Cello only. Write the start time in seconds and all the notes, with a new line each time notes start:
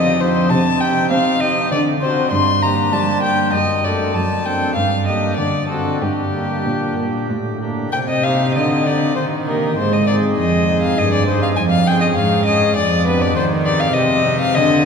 Already playing: F3
0.50 C3
1.11 C4
1.72 D3
2.31 G2
2.93 G3
3.53 F#2
4.15 F#2
4.76 G2
5.38 D3
6.02 G2
6.66 A#2
7.30 A2
7.94 C3
8.56 D3
9.16 D#3
9.77 G#2
10.38 F2
10.98 G2
11.58 F2
12.17 G#2
12.77 F2
13.36 D#3
13.96 C3
14.57 D3